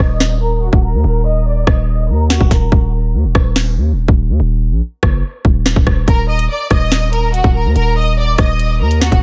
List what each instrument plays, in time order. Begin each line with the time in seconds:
0.00 808-style bass D#1, violin section D#5 D#6
0.20 snare
0.41 violin section A#4 A#5
0.62 violin section F#4 F#5
0.73 808-style bass D#1, kick
0.83 violin section A#4 A#5
0.94 808-style bass D#2
1.04 808-style bass D#1, violin section A#4 A#5
1.26 violin section D#5 D#6
1.47 violin section D5 D6
1.67 808-style bass D#1, violin section D#5 D#6, kick, cross-stick
2.09 808-style bass D#2, violin section A#4 A#5
2.30 violin section F#4 F#5, snare
2.41 808-style bass D#1, kick
2.51 808-style bass D#1, violin section A#4 A#5, kick, snare
2.72 808-style bass D#1, kick
3.14 808-style bass D#2
3.24 808-style bass D#1
3.35 808-style bass D#1, kick, cross-stick
3.56 snare
3.77 808-style bass D#2
3.93 808-style bass D#1
4.08 808-style bass D#1, kick
4.29 808-style bass D#2
4.40 808-style bass D#1
4.71 808-style bass A#1
5.03 808-style bass F#1, kick, cross-stick
5.45 808-style bass D#1, kick
5.66 snare
5.76 808-style bass D#1, kick
5.87 808-style bass D#1, kick, cross-stick
6.08 808-style bass D#1, violin section A#4 A#5, kick, closed hi-hat
6.28 violin section D#5 D#6
6.39 closed hi-hat
6.50 violin section D5 D6
6.70 808-style bass D#1, violin section D#5 D#6, kick, cross-stick, closed hi-hat
6.92 snare, closed hi-hat
7.13 violin section A#4 A#5, closed hi-hat
7.33 violin section F#4 F#5, closed hi-hat
7.44 808-style bass D#1, kick
7.55 violin section A#4 A#5
7.65 808-style bass D#2
7.76 808-style bass D#1, violin section A#4 A#5, closed hi-hat
7.97 violin section D#5 D#6
8.18 violin section D5 D6
8.38 808-style bass D#1, violin section D#5 D#6, kick, cross-stick, closed hi-hat
8.59 closed hi-hat
8.80 808-style bass D#2, violin section A#4 A#5
8.91 closed hi-hat
9.01 violin section F#4 F#5, snare
9.12 808-style bass D#1, kick, closed hi-hat